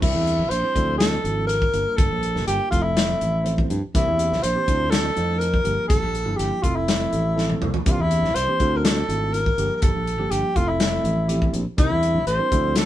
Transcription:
0.01 C2 G3 C4 D4 E4 A#4, kick, crash
0.15 E2
0.27 closed hi-hat
0.39 C2
0.50 A#1 C5, closed hi-hat
0.63 G3 C4 D4 E4 C5
0.74 D2 F3 C4 D4 E4 A4, kick, closed hi-hat
0.98 A4, snare, closed hi-hat
1.23 G#1 F3 C4 D4 E4 A4, closed hi-hat
1.47 A#4, closed hi-hat
1.62 kick
1.74 G1 G3 A#3 D4 F4 A#4, closed hi-hat
1.96 G1 A4, kick, closed hi-hat
2.11 A#1
2.23 closed hi-hat
2.35 G1 G3 A#3 D4 F4 A#4, snare
2.47 G1 G4, closed hi-hat
2.70 F1 F3 A3 C4 E4 F4 A4, kick, closed hi-hat
2.82 E4
2.97 snare, closed hi-hat
3.21 A1, closed hi-hat
3.44 F3 A3 C4 E4 C5, closed hi-hat
3.58 kick
3.70 G2, closed hi-hat
3.94 C2 E3 A#3 C4 D4 E4 G4, kick, closed hi-hat
4.08 E2
4.19 closed hi-hat
4.32 C2, snare
4.43 A#1 C5, closed hi-hat
4.56 E3 A#3 C4 D4 G4
4.67 D2 A3 C4 D4 E4 F4, kick, closed hi-hat
4.90 A4, snare, closed hi-hat
5.16 F2 A3 C4 D4 E4 F4, closed hi-hat
5.38 A#4, closed hi-hat
5.54 kick
5.64 G1 F3 G3 A#3 D4 G4, closed hi-hat
5.88 G1 A4, kick, closed hi-hat
6.02 A#1
6.15 closed hi-hat
6.26 G1 F3 G3 A#3 D4 E4
6.36 G1 G4, closed hi-hat
6.62 F1 F3 A3 C4 E4 F4 A4, kick, closed hi-hat
6.76 E4
6.88 snare, closed hi-hat
7.13 A1, closed hi-hat
7.36 F3 A3 C4 E4 A4, snare
7.50 high tom
7.62 C2, mid tom
7.74 floor tom
7.86 C2 E3 A#3 C4 D4 E4 G4, kick, closed hi-hat
7.92 F4
7.99 E2 E4
8.11 closed hi-hat
8.23 C2, snare
8.35 C2 C5, closed hi-hat
8.48 E3 A#3 C4 D4 G4
8.60 D2 A3 C4 D4 E4 F4, kick, closed hi-hat
8.76 A#4
8.84 A4, snare, closed hi-hat
9.09 G#1 A3 C4 D4 E4 F4, closed hi-hat
9.33 A#4, closed hi-hat
9.46 kick
9.58 G1 F3 G3 A#3 D4 G4, closed hi-hat
9.75 A#4
9.81 G1 A4, kick, closed hi-hat
9.95 A#1
10.07 closed hi-hat
10.19 G1 F3 G3 A#3 D4 G4
10.30 G1 G4, closed hi-hat
10.56 F1 F3 A3 C4 E4 F4 A4, kick, closed hi-hat
10.68 E4
10.80 snare, closed hi-hat
11.04 A1, closed hi-hat
11.28 F3 A3 C4 E4 G4, closed hi-hat
11.42 kick
11.53 A#1, closed hi-hat
11.77 C2 G3 C4 D4 E4 A#4, kick, closed hi-hat
11.90 E2
12.03 closed hi-hat
12.15 C2
12.27 A1 C5, closed hi-hat
12.39 G3 C4 D4 E4 A#4
12.52 D2 F3 C4 D4 E4 A4, kick, closed hi-hat
12.76 A4, snare, closed hi-hat

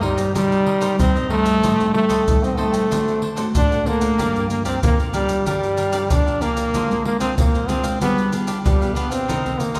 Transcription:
Already playing: G2
0.01 G3 A#3 D#4 A#4 C5 D#5, pandeiro
0.16 A#4 C5 D#5, pandeiro, maracas, surdo
0.35 C3 G3 A#3 D#4 A#4 C5 D#5, pandeiro, maracas, surdo
0.52 pandeiro, maracas
0.65 D#4 A#4 C5 D#5, pandeiro
0.80 G3 A#3 D#4 A#4 C5 D#5, pandeiro, maracas
0.98 G2 C4 D#4 A#4 C5 D#5, pandeiro, maracas, surdo
1.15 G3 A#3 D#4 A#4 C5 D#5, pandeiro, maracas
1.30 A3 D#4 A#4 C5 D#5, pandeiro
1.45 A#4 C5 D#5, pandeiro, maracas, surdo
1.62 A2 G3 C4 D#4 A4 C5 D#5 G5, pandeiro, maracas, surdo
1.80 G3 C4 D#4, pandeiro, maracas, surdo
1.94 A3, pandeiro
2.09 A4 C5 D#5 G5, pandeiro, maracas, surdo
2.28 A2 G3 C4 D#4, pandeiro, maracas, surdo
2.43 C4 C5 D#5 G5, pandeiro, maracas
2.57 G3 A3 C4 D#4 A4 C5 D#5 G5, pandeiro
2.72 C5 D#5 G5, pandeiro, maracas, surdo
2.90 D3 A3 C4 D4 F#4 A4 C5 F#5, pandeiro, maracas, surdo
3.08 pandeiro, maracas
3.22 D4 A4 C5 F#5, pandeiro
3.36 A3 C4 D4 F#4 A4 C5 F#5, pandeiro, maracas
3.54 A2 D4 A4 C5 F#5, pandeiro, maracas, surdo
3.71 A3 C4 F#4 A4 C5 F#5, pandeiro, maracas
3.86 A#3 D4 A4 C5 F#5, pandeiro
4.01 A4 C5 F#5, pandeiro, maracas, surdo
4.18 G2 F3 A#3 D4 G4 A#4 D5 F5, pandeiro, maracas, surdo
4.36 F3 A#3 D4, pandeiro, maracas, surdo
4.50 A#3, pandeiro, maracas
4.65 C4 G4 A#4 D5 F5, pandeiro, maracas, surdo
4.83 D3 F3 A#3 D4, pandeiro, maracas, surdo
4.99 A#4 D5 F5, pandeiro, maracas
5.13 F3 G3 A#3 D4 G4 A#4 D5 F5, pandeiro, maracas
5.28 A#4 D5 F5, pandeiro, maracas, surdo
5.46 G2 F3 G3 A#3 D4 G4 A#4 D5 F5, pandeiro, maracas, surdo
5.63 pandeiro, maracas
5.77 G4 A#4 D5 F5, pandeiro, maracas
5.92 F3 A#3 D4 G4 A#4 D5 F5, pandeiro, maracas
6.10 D3 D4 G4 A#4 D5 F5, pandeiro, maracas, surdo
6.26 F3 A#3 D4 A#4 D5 F5, pandeiro, maracas
6.41 A#3 G4 A#4 D5 F5, pandeiro, maracas, surdo
6.57 A#4 D5 F5, pandeiro, maracas, surdo
6.74 D3 G#3 C4 D4 F4 G#4 C5 F5, pandeiro, maracas, surdo
6.90 G#3 C4 F4, pandeiro, maracas, surdo
7.05 A#3, pandeiro
7.20 G#3 C4 D4 F4 G#4 C5 F5, pandeiro, maracas, surdo
7.37 D3 A#3, pandeiro, maracas, surdo
7.54 G#4 C5 F5, pandeiro, maracas
7.68 G#3 C4 D4 F4 G#4 C5 F5, pandeiro, maracas
7.83 G#4 C5 F5, pandeiro, maracas, surdo
8.01 G3 B3 D4 F4 G4 G#4 B4 F5, pandeiro, maracas, surdo
8.18 pandeiro, maracas
8.32 B3 D4 F4 G4 G#4 B4 F5, pandeiro, maracas
8.47 D4 G4 B4 F5, pandeiro, maracas
8.64 D3 G3 D4 G4 B4 F5, pandeiro, maracas, surdo
8.81 B3 F4 G4 G#4 B4 F5, pandeiro, maracas
8.95 B3 D4 G4 B4 F5, pandeiro, maracas
9.10 C4 G4 B4 F5, pandeiro, maracas, surdo
9.28 C3 D#3 A#3 D4 D#4 A#4 C5 D#5, pandeiro, maracas, surdo
9.46 D#3 A#3, pandeiro, maracas, surdo
9.60 A#3, pandeiro, maracas
9.74 D#4 A#4 C5 D#5, pandeiro, maracas, surdo

